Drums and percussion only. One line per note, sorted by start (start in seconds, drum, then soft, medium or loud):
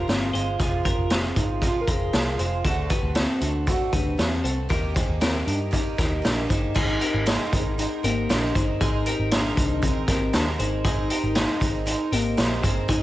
0.09 snare loud
0.09 closed hi-hat medium
0.35 closed hi-hat medium
0.60 kick medium
0.60 closed hi-hat medium
0.85 kick medium
0.85 closed hi-hat medium
1.10 snare loud
1.10 closed hi-hat medium
1.36 kick medium
1.36 closed hi-hat medium
1.62 kick medium
1.62 closed hi-hat medium
1.88 kick medium
1.88 closed hi-hat medium
2.13 snare loud
2.13 closed hi-hat medium
2.39 closed hi-hat medium
2.64 kick medium
2.64 closed hi-hat medium
2.90 kick medium
2.90 closed hi-hat medium
3.15 snare loud
3.15 closed hi-hat medium
3.41 closed hi-hat medium
3.67 kick medium
3.67 closed hi-hat medium
3.93 kick medium
3.93 closed hi-hat medium
4.19 snare medium
4.19 closed hi-hat medium
4.45 closed hi-hat medium
4.70 kick medium
4.70 closed hi-hat medium
4.96 kick medium
4.96 closed hi-hat medium
5.21 snare loud
5.21 closed hi-hat medium
5.48 closed hi-hat medium
5.73 kick medium
5.73 closed hi-hat medium
5.98 kick medium
5.98 snare soft
5.98 closed hi-hat medium
6.25 snare loud
6.25 closed hi-hat medium
6.50 kick medium
6.50 closed hi-hat medium
6.76 kick medium
6.76 crash medium
7.01 closed hi-hat medium
7.26 snare loud
7.26 closed hi-hat loud
7.53 kick medium
7.53 closed hi-hat medium
7.79 closed hi-hat medium
8.04 closed hi-hat medium
8.30 snare loud
8.30 closed hi-hat medium
8.55 kick medium
8.55 closed hi-hat medium
8.81 kick medium
8.81 closed hi-hat medium
9.06 closed hi-hat medium
9.31 snare loud
9.31 closed hi-hat medium
9.57 kick medium
9.57 closed hi-hat medium
9.83 kick medium
9.83 closed hi-hat medium
10.08 kick medium
10.08 snare soft
10.08 closed hi-hat medium
10.34 snare loud
10.34 closed hi-hat medium
10.59 closed hi-hat medium
10.84 kick medium
10.84 closed hi-hat medium
11.10 closed hi-hat medium
11.35 snare loud
11.35 closed hi-hat medium
11.61 kick medium
11.61 closed hi-hat medium
11.87 closed hi-hat medium
12.12 closed hi-hat medium
12.38 snare loud
12.38 closed hi-hat medium
12.63 kick medium
12.63 closed hi-hat medium
12.89 kick medium
12.89 closed hi-hat medium